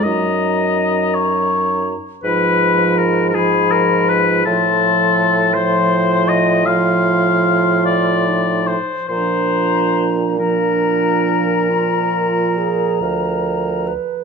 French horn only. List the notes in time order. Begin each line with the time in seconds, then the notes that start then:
0.07 F#3
2.25 F3
3.35 F3
4.46 F3
5.56 F3
6.67 F3
9.10 F3
10.40 F3